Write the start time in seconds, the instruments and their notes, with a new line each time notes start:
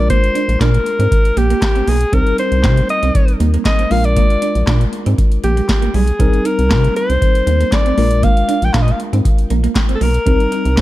Already playing: analog synth bass A#1, tine electric piano G#3 D4 F4 A#4
0.10 clean electric guitar A#3, alto saxophone C5, kick, closed hi-hat
0.24 closed hi-hat
0.35 clean electric guitar D4, closed hi-hat
0.48 analog synth bass A#1, closed hi-hat
0.61 analog synth bass A#2, clean electric guitar D4, alto saxophone A#4, kick, snare, clap, closed hi-hat
0.74 muted clean electric guitar stroke, closed hi-hat
0.86 closed hi-hat
0.99 analog synth bass G#2, clean electric guitar C4, closed hi-hat
1.12 muted clean electric guitar stroke, kick, closed hi-hat
1.25 closed hi-hat
1.37 analog synth bass A#1, clean electric guitar A#3, alto saxophone G4, closed hi-hat
1.50 clean electric guitar A#3, closed hi-hat
1.62 muted clean electric guitar stroke, kick, snare, clap, closed hi-hat
1.75 clean electric guitar C4, closed hi-hat
1.88 analog synth bass B1, clean electric guitar A#3, alto saxophone G#4, open hi-hat
2.01 closed hi-hat
2.12 analog synth bass C2, tine electric piano G3 C4 D#4 A#4, clean electric guitar C4, alto saxophone A#4, kick, closed hi-hat
2.27 muted clean electric guitar stroke, closed hi-hat
2.38 clean electric guitar D#4, alto saxophone C5, closed hi-hat
2.52 analog synth bass C2, closed hi-hat
2.64 analog synth bass C3, clean electric guitar D#4, kick, snare, clap, closed hi-hat
2.77 muted clean electric guitar stroke, closed hi-hat
2.89 alto saxophone D#5, closed hi-hat
3.03 analog synth bass C2, clean electric guitar C4, closed hi-hat
3.15 muted clean electric guitar stroke, kick, closed hi-hat
3.28 closed hi-hat
3.40 analog synth bass D#2, clean electric guitar A#3, closed hi-hat
3.54 clean electric guitar A#3, closed hi-hat
3.65 alto saxophone D#5, muted clean electric guitar stroke, kick, snare, clap, closed hi-hat
3.79 clean electric guitar C4, closed hi-hat
3.90 analog synth bass A#1, tine electric piano G#3 D4 F4 A#4, clean electric guitar A#3, alto saxophone F5, open hi-hat
4.04 alto saxophone D5, closed hi-hat
4.16 clean electric guitar A#3, kick, closed hi-hat
4.30 muted clean electric guitar stroke, closed hi-hat
4.42 clean electric guitar D4, closed hi-hat
4.55 analog synth bass A#1, closed hi-hat
4.67 analog synth bass A#2, clean electric guitar D4, kick, snare, clap, closed hi-hat
4.81 muted clean electric guitar stroke, closed hi-hat
4.93 closed hi-hat
5.06 analog synth bass G#2, clean electric guitar C4, closed hi-hat
5.18 muted clean electric guitar stroke, kick, closed hi-hat
5.32 closed hi-hat
5.44 analog synth bass A#1, clean electric guitar A#3, alto saxophone G4, closed hi-hat
5.57 clean electric guitar G#3, closed hi-hat
5.69 muted clean electric guitar stroke, kick, snare, clap, closed hi-hat
5.82 clean electric guitar A#3, closed hi-hat
5.94 analog synth bass B1, clean electric guitar G3, alto saxophone G#4, open hi-hat
6.07 closed hi-hat
6.19 analog synth bass C2, tine electric piano G3 C4 D#4 A#4, clean electric guitar C4, kick, closed hi-hat
6.33 muted clean electric guitar stroke, closed hi-hat
6.45 clean electric guitar D#4, alto saxophone A#4, closed hi-hat
6.59 analog synth bass C2, closed hi-hat
6.70 analog synth bass C3, clean electric guitar D#4, kick, snare, clap, closed hi-hat
6.84 muted clean electric guitar stroke, closed hi-hat
6.96 alto saxophone C5, closed hi-hat
7.09 analog synth bass C2, clean electric guitar C4, closed hi-hat
7.21 muted clean electric guitar stroke, kick, closed hi-hat
7.35 closed hi-hat
7.47 analog synth bass D#2, clean electric guitar A#3, closed hi-hat
7.60 clean electric guitar A#3, closed hi-hat
7.72 alto saxophone D5, kick, snare, clap, closed hi-hat
7.86 clean electric guitar C4, closed hi-hat
7.97 analog synth bass A#1, tine electric piano G#3 D4 F4 A#4, clean electric guitar A#3, open hi-hat
8.11 closed hi-hat
8.23 clean electric guitar A#3, alto saxophone F5, kick, closed hi-hat
8.37 muted clean electric guitar stroke, closed hi-hat
8.49 clean electric guitar D4, closed hi-hat
8.62 analog synth bass A#1, alto saxophone G5, closed hi-hat
8.73 analog synth bass A#2, clean electric guitar D4, alto saxophone F5, kick, snare, clap, closed hi-hat
8.82 alto saxophone D#5
8.88 alto saxophone F5, muted clean electric guitar stroke, closed hi-hat
9.00 closed hi-hat
9.13 analog synth bass G#2, clean electric guitar C4, closed hi-hat
9.25 muted clean electric guitar stroke, kick, closed hi-hat
9.38 closed hi-hat
9.50 analog synth bass A#1, clean electric guitar A#3, closed hi-hat
9.64 clean electric guitar A#3, closed hi-hat
9.75 kick, snare, clap, closed hi-hat
9.89 clean electric guitar C4, closed hi-hat
9.95 alto saxophone A4
10.01 analog synth bass B1, clean electric guitar A#3, alto saxophone A#4, open hi-hat
10.14 closed hi-hat
10.26 analog synth bass C2, tine electric piano G3 C4 D#4 A#4, clean electric guitar C4, kick, closed hi-hat
10.40 muted clean electric guitar stroke, closed hi-hat
10.52 clean electric guitar D#4, closed hi-hat
10.65 analog synth bass C2, closed hi-hat
10.77 analog synth bass C3, clean electric guitar D#4, kick, snare, clap, closed hi-hat